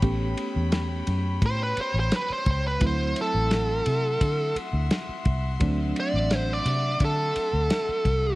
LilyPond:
<<
  \new Staff \with { instrumentName = "String section" } { \time 4/4 \key d \major \tempo 4 = 86 <cis'' g'' b''>1 | <e'' fis'' c'''>1~ | <e'' fis'' c'''>1 | }
  \new Staff \with { instrumentName = "Lead electric guitar" } { \time 4/4 \key d \major r2 c''16 b'16 c''16 c''16 b'16 c''16 c''16 b'16 | c''8 a'2 r4. | r8 d''8 c''16 d''8. a'2 | }
  \new Staff \with { instrumentName = "Reed electric piano" } { \time 4/4 \key d \major <a b cis' g'>1 | <fis a c' e'>1 | <fis a c' d'>1 | }
  \new Staff \with { instrumentName = "Fingered electric bass" } { \clef bass \time 4/4 \key d \major a,,8 r16 e,8. fis,8 a,8 r16 a,,16 r8 cis,8 | d,8 r16 a,,8. c8 d8 r16 d,16 r8 c,8 | d,8 r16 a,,8. c8 d8 r16 d,16 r8 c,8 | }
  \new DrumStaff \with { instrumentName = "Drums" } \drummode { \time 4/4 <bd cymr>8 cymr8 <cymr sn>8 cymr8 <bd cymr>8 cymr8 <cymr sn>8 <bd cymr>8 | <bd cymr>8 cymr8 <cymr sn>8 cymr8 <bd cymr>8 cymr8 <cymr sn>8 <bd cymr>8 | <bd cymr>8 cymr8 <cymr sn>8 cymr8 <bd cymr>8 cymr8 <cymr sn>8 <bd cymr>8 | }
>>